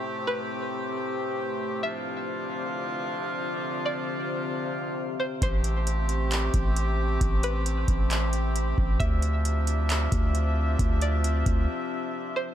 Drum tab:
HH |--------|--------|--------|xxxxxxx-|
CP |--------|--------|--------|----x---|
BD |--------|--------|--------|o----o--|

HH |xxxxxxx-|xxxxxxx-|xxxx----|
CP |----x---|----x---|--------|
BD |o--o---o|o----o--|o--o----|